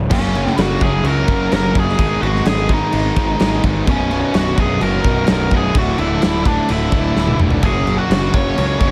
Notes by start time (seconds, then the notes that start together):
Already playing: G#2 C#3
0.11 F#1 F#2 C#3 F#3 A#3 C#4 F#4 A#4 C#5 G#5, kick, crash
0.35 F#2 C#3 F#3, crash
0.47 snare
0.58 F#1 F#2 C#3 F#3 F#5, snare, crash
0.62 F#4
0.81 F#1 F#2 C#3 F#3 G#4 G#5, kick, crash
1.04 C#2 F#2 C#3 F#3 A#3 C#4 F#4, crash
1.08 A#4 A#5
1.28 F#1 F#2 C#3 F#3, kick, crash
1.51 F#1 F#2 C#3 F#3 A#5, snare, crash
1.56 A#4
1.74 F#1 F#2 C#3 F#3, kick, crash
1.79 G#4 G#5
1.89 snare
1.97 G#1 G#2 D#3 G#3 B3 D#4 G#4, kick, crash
2.21 G#1 G#2 D#3 G#3 F#4 F#5, crash
2.36 snare
2.45 G#1 G#2 D#3 G#3 G#4 G#5, snare, crash
2.69 G#2 D#3 G#3, kick, crash
2.73 D#4 D#5
2.92 G#1 G#2 D#3 G#3 B3 D#4 G#4, crash
3.16 G#1 G#2 D#3 G#3, kick, crash
3.39 G#1 G#2 D#3 G#3, snare, crash
3.63 G#1 G#2 D#3 G#3, kick, crash
3.87 B0 B1 F#2 B2 F#3 C#4 C#5 D#5, kick, crash
3.91 C#4
4.10 B1 F#2 B2, crash
4.34 B0 B1 F#2 B2 F#5, snare, crash
4.39 F#4
4.57 B0 B1 F#2 B2 G#5, kick, crash
4.61 G#4
4.80 F#1 B1 F#2 B2 F#3 A#4 A#5, crash
4.84 C#4
5.04 B0 B1 F#2 B2, kick, crash
5.27 B0 B1 F#2 B2, snare, crash
5.33 A#4 A#5
5.51 B0 B1 F#2 B2, kick, crash
5.57 G#4 G#5
5.72 D1 D2 A2 D3 D4 A4 E5, kick, crash
5.76 E3 A3 D4 F#4 F#5
5.97 D1 D2 A2 D3 E4 E5, crash
6.22 D1 D2 A2 D3, snare, crash
6.45 D2 A2 D3 D4 D5, kick, crash
6.68 D1 D2 A2 D3 E3 A3 D4 E4, crash
6.73 E5
6.91 D1 D2 A2 D3, kick, crash
7.15 D1 D2 A2 D3, snare
7.27 high tom
7.39 F1 D2 A2 D3, mid tom
7.50 floor tom
7.60 F#1 F#2 C#3 F#3 A#3 C#4 F#4 A#4 G#5, kick, crash
7.64 F#4 G#4 G#5
7.84 F#2 C#3 F#3, crash
7.98 F#4 F#5
8.08 F#1 F#2 C#3 F#3, snare, crash
8.32 F#1 F#2 C#3 F#3 C#5 C#6, kick, crash
8.56 C#2 F#2 C#3 F#3 A#3 C#4 F#4, crash
8.79 F#1 F#2 C#3 F#3, kick, crash